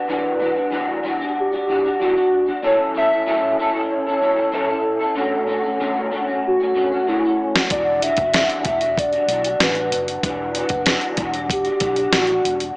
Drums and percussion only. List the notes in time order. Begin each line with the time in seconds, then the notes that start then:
7.56 snare
7.70 kick, closed hi-hat
8.02 closed hi-hat
8.17 kick, closed hi-hat
8.34 snare, closed hi-hat
8.49 closed hi-hat
8.65 kick, closed hi-hat
8.81 closed hi-hat
8.98 kick, closed hi-hat
9.13 closed hi-hat
9.29 closed hi-hat
9.44 closed hi-hat
9.60 snare, closed hi-hat
9.75 closed hi-hat
9.92 closed hi-hat
10.08 closed hi-hat
10.23 kick, closed hi-hat
10.55 closed hi-hat
10.69 kick, closed hi-hat
10.86 snare, closed hi-hat
11.01 closed hi-hat
11.17 kick, closed hi-hat
11.34 closed hi-hat
11.50 kick, closed hi-hat
11.65 closed hi-hat
11.80 kick, closed hi-hat
11.96 closed hi-hat
12.13 snare, closed hi-hat
12.27 closed hi-hat
12.45 closed hi-hat
12.60 closed hi-hat